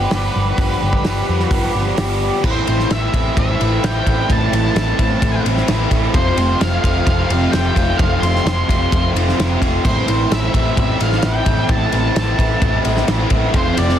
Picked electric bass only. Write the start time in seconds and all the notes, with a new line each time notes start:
0.13 G1
0.36 G1
0.58 G1
0.83 G1
1.06 G1
1.29 F2
1.51 G1
1.75 G1
1.98 G1
2.44 A1
2.68 A1
2.91 A1
3.14 A1
3.37 A1
3.61 A1
3.84 A1
4.07 A1
4.30 A1
4.52 A1
4.75 A1
4.99 A1
5.22 A1
5.45 A1
5.69 A1
5.91 A1
6.14 F1
6.37 F1
6.61 F1
6.84 F1
7.07 F1
7.30 F1
7.54 F1
7.77 F1
8.00 F1
8.22 F1
8.45 F1
8.70 F1
8.93 F1
9.15 F1
9.39 F1
9.62 F1
9.85 A1
10.09 A1
10.31 A1
10.54 A1
10.77 A1
11.01 A1
11.24 A1
11.47 A1
11.69 A1
11.93 A1
12.16 A1
12.39 A1
12.62 A1
12.86 A1
13.08 A1
13.31 A1
13.54 F1
13.78 F1